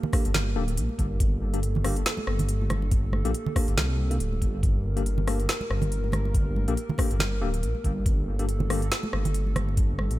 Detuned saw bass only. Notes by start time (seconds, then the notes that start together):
0.25 G1
0.56 D1
0.77 A#1
0.99 G1
1.20 G1
2.27 G1
2.70 G1
3.25 A#1
3.68 G1
3.77 C2
4.20 D1
4.42 G1
4.63 G1
5.70 G1
6.13 G1
6.68 A#1
7.11 G1
7.41 D1
7.63 A#1
7.84 G1
8.06 G1
9.13 G1
9.56 G1
10.11 A#1